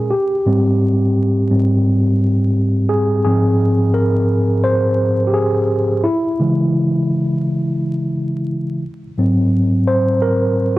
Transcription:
Already playing: A#2 G#3 C#4 G#4 A#4
0.11 G4
0.46 G#2 G3 C4
1.50 G#2 G3 C4
2.89 G#4
3.24 G#2 F3 C4 G#4
3.94 A#4
4.64 C5
5.27 G4
5.33 G#4
6.04 E4
6.39 C#3 E3 G#3
9.18 G#2 F#3 C4
9.87 C5
10.22 A#4

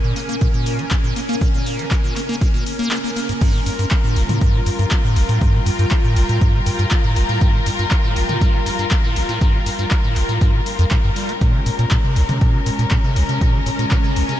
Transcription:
Already playing: C#4 A#4 G#5
0.04 A#2
0.16 A#3, open hi-hat
0.29 A#3, closed hi-hat
0.41 A#2, kick, closed hi-hat
0.54 A#2
0.66 open hi-hat
0.79 F3, closed hi-hat
0.91 A#2, kick, clap, closed hi-hat
1.04 A#2
1.16 A#3, open hi-hat
1.29 A#3, closed hi-hat
1.41 A#2, kick, closed hi-hat
1.54 A#2
1.66 open hi-hat
1.79 F3, closed hi-hat
1.91 A#2, kick, clap, closed hi-hat
2.04 A#2
2.16 A#3, clap, open hi-hat
2.29 A#3, closed hi-hat
2.41 A#2, kick, closed hi-hat
2.54 A#2
2.66 open hi-hat
2.79 A#3, closed hi-hat
2.91 A#3, clap, closed hi-hat
3.04 A#3
3.16 A#3, open hi-hat
3.29 G#2, closed hi-hat
3.41 G2 G3 F4 A#4, kick, closed hi-hat, crash
3.54 A#2
3.63 G2 G5, open hi-hat
3.79 G2, closed hi-hat
3.91 kick, clap, closed hi-hat
4.04 A2
4.16 G1, open hi-hat
4.29 A2, closed hi-hat, mid tom
4.41 G2, kick, closed hi-hat
4.54 A#2
4.66 G2, open hi-hat
4.79 G2, closed hi-hat
4.91 kick, clap, closed hi-hat
5.04 A2
5.16 G1, open hi-hat
5.29 A2, closed hi-hat
5.41 G2, kick, closed hi-hat
5.54 A#2
5.66 G2, open hi-hat
5.79 G2, closed hi-hat
5.91 kick, clap, closed hi-hat
6.04 A2
6.16 G1, open hi-hat
6.29 A2, closed hi-hat
6.41 G2, kick, closed hi-hat
6.54 A#2
6.66 G2, open hi-hat
6.79 G2, closed hi-hat
6.91 kick, clap, closed hi-hat
7.04 A2
7.16 G1, open hi-hat
7.29 A2, closed hi-hat
7.41 G2, kick, closed hi-hat
7.54 A#2
7.66 G2, open hi-hat
7.79 G2, closed hi-hat
7.91 kick, clap, closed hi-hat
8.04 A2
8.16 G1, open hi-hat
8.29 A2, closed hi-hat, mid tom
8.41 G2, kick, closed hi-hat
8.54 A#2
8.66 G2, open hi-hat
8.79 G2, closed hi-hat
8.91 kick, clap, closed hi-hat
9.04 A2
9.16 G1, open hi-hat
9.29 A2, closed hi-hat
9.41 G2, kick, closed hi-hat
9.54 A#2
9.66 G2, open hi-hat
9.79 G2, closed hi-hat
9.91 kick, clap, closed hi-hat
10.04 A2
10.16 G1, clap, open hi-hat
10.29 A2, closed hi-hat
10.41 G2, kick, closed hi-hat
10.54 A#2
10.66 open hi-hat
10.79 F2, closed hi-hat
10.91 A#2, kick, clap, closed hi-hat
11.04 G2
11.16 G3, open hi-hat
11.29 A#3, closed hi-hat
11.41 A#2 G#3 C#4 A#4, kick, closed hi-hat
11.54 C#3
11.66 A#2, open hi-hat
11.79 A#2, closed hi-hat
11.88 A#2 A#4, kick, clap, closed hi-hat
12.04 C3
12.16 A#1, open hi-hat
12.29 C3, closed hi-hat, mid tom
12.41 A#2 G#5, kick, closed hi-hat
12.54 C#3
12.66 A#2, open hi-hat
12.79 A#2, closed hi-hat
12.91 A#2, kick, clap, closed hi-hat
13.04 C3
13.16 A#1, open hi-hat
13.29 C3, closed hi-hat
13.41 A#2, kick, closed hi-hat
13.54 C#3
13.66 A#2, open hi-hat
13.79 A#2, closed hi-hat
13.91 A#2, kick, clap, closed hi-hat
14.04 C3
14.16 A#1, open hi-hat
14.29 C3, closed hi-hat

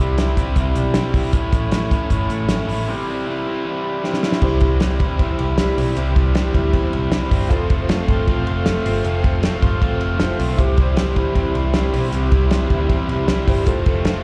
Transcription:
Already playing: C3 E4
0.00 C2 G3 C4 E4
0.18 C3 G3 C4 E4, snare, closed hi-hat
0.37 G3 C4 E4, kick, closed hi-hat
0.56 C2 C3 G3 C4 E4, kick, closed hi-hat
0.75 B1 G3, closed hi-hat
0.94 C3 G3 C4 E4, snare, closed hi-hat
1.13 G3 C4 E4, kick, open hi-hat
1.33 A1 A2 E3 A3 C#4 E4, kick, closed hi-hat
1.52 A1 A3 C#4 E4, kick, closed hi-hat
1.71 A2 E3 A3 C#4 E4, snare, closed hi-hat
1.90 A3 C#4 E4, kick, closed hi-hat
2.10 G1 E3 A3 C#4 E4, kick, closed hi-hat
2.30 A1 A3, closed hi-hat
2.49 A2 E3 A3 C#4 E4, snare, closed hi-hat
2.68 A1 A3 C#4 E4, open hi-hat
2.88 C3 E3 G3 C4 E4
3.07 G3 C4 E4
3.26 C3 E3 G3 C4 E4
3.46 G3 C4 E4
3.65 E3 G3 C4 E4
3.85 G3
4.04 C3 E3 G3 C4 E4, snare
4.13 snare
4.23 G3 C4 E4, snare
4.32 snare
4.41 C2 C3 E3 G3 C4 E4 G4 C5 E5 C6, kick, crash
4.60 C2 G3, kick, ride
4.80 E3 G3 C4 E4, snare, ride
5.00 D2 E4, kick, ride
5.19 E2 C3 E3 G3 C4 E4, kick, ride
5.39 C2 E4, ride
5.57 E3 G3 C4 E4, snare, ride
5.76 B1 G3 C4 E4, open hi-hat, ride
5.96 C2 C3 E3 G3 C4 E4, hi-hat pedal, ride
6.16 C2 G3, kick, ride
6.35 E3 G3 C4 E4, snare, ride
6.54 D2 E4, kick, ride
6.73 E2 C3 E3 G3 C4 E4, kick, ride
6.93 C2 E4, ride
7.12 E3 G3 C4 E4, snare, ride
7.31 G1 G3 C4 E4, kick, open hi-hat, ride
7.49 F1 F2 F3 A3 C4 F4 A4 C5 F5, kick, hi-hat pedal, ride
7.70 F1 A3, kick, ride
7.89 F3 A3 C4 F4, snare, ride
8.08 G1 F4, kick, ride
8.28 A1 F3 A3 C4 F4, kick, ride
8.47 F1 F4, ride
8.66 F3 A3 C4 F4, snare, ride
8.85 G1 A3 C4 F4, open hi-hat, ride
9.04 F1 F2 F3 A3 C4 F4, hi-hat pedal, ride
9.24 F1 A3, kick, ride
9.43 F3 A3 C4 F4, snare, ride
9.62 G1 F4, kick, ride
9.81 A1 F3 A3 C4 F4, kick, ride
10.01 F1 F4, ride
10.19 F3 A3 C4 F4 A4 C5, snare, ride
10.38 B1 A3 C4 F4, open hi-hat, ride
10.57 C2 C3 E3 G3 C4 E4 G4 C5 E5, kick, hi-hat pedal, ride
10.77 C2 G3 C4 E4, kick, ride
10.97 E3 G3 C4 E4, snare, ride
11.16 D2 E4, kick, ride
11.35 E2 C3 E3 G3 C4 E4, kick, ride
11.55 C2 E4, ride
11.73 E3 G3 C4 E4, snare, ride
11.93 B1 G3 C4 E4, open hi-hat, ride
12.11 C2 C3 E3 G3 C4 E4, hi-hat pedal, ride
12.31 C2 G3 C4 E4, kick, ride
12.50 E3 G3 C4 E4, snare, ride
12.70 D2 E4, kick, ride
12.89 E2 C3 E3 G3 C4 E4, kick, ride
13.09 C2 E4, ride
13.27 E3 G3 C4 E4, snare, ride
13.46 G1 G3 C4 E4 G4 C5, kick, open hi-hat, ride
13.65 F1 F2 F3 A3 C4 F4 A4 C5 F5 C6, kick, hi-hat pedal, ride
13.85 F1 A3 C4 F4, kick, ride
14.04 F3 A3 C4 F4, snare, ride

